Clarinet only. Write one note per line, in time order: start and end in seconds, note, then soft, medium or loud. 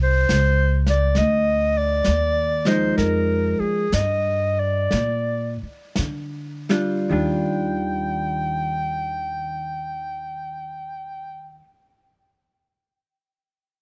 0.03 0.84 C5 medium
0.90 1.20 D5 medium
1.18 1.79 D#5 medium
1.78 2.69 D5 medium
2.67 2.97 C5 medium
2.97 3.61 A#4 medium
3.60 3.95 G#4 medium
3.94 4.61 D#5 medium
4.60 5.62 D5 medium
7.11 11.60 G5 medium